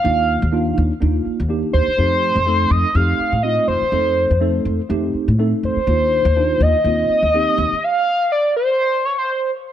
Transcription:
X:1
M:4/4
L:1/16
Q:"Swing 16ths" 1/4=124
K:Cdor
V:1 name="Analog synth lead"
f6 z8 c2- | c6 e2 f4 e2 c2- | c6 z8 c2- | c6 e8- e2 |
f4 d2 c4 _d c3 z2 |]
V:2 name="Tine electric piano"
[B,DEF]4 [B,DEF]4 [B,DEF]4 [B,DEG]4 | [A,CEG]4 [A,CEA]4 [A,CEG]4 [A,CEF]4 | [A,CEA]4 [A,CEA]4 [A,CEG]4 [A,CEA]4 | [B,DEF]4 [B,DEF]4 [B,CEF]4 [B,CEG]4 |
z16 |]
V:3 name="Upright bass" clef=bass
E,,3 E,,3 E,, z E,,2 z E,,2 z E,, z | F,,3 F,,3 F,, z F,,2 z A,,2 z F,, z | F,,3 F,,3 F,, z F,,2 z A,,2 z F,, z | E,,3 E,,3 E,, z E,,2 z E,,2 z E,, z |
z16 |]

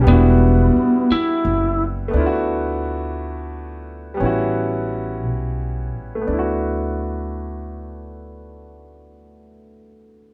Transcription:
X:1
M:6/8
L:1/8
Q:3/8=58
K:D
V:1 name="Grand piano"
[G,B,DEF]6 | [A,B,DE=F^F]6 | [G,B,CEF]6 | [A,B,DEF]6- |
[A,B,DEF]6 |]
V:2 name="Lead electric guitar"
B,3 E2 z | z6 | z6 | z6 |
z6 |]
V:3 name="Upright bass" clef=bass
E,,,2 z2 F,,,2 | D,,6 | A,,,3 B,,,2 A,,, | D,,6- |
D,,6 |]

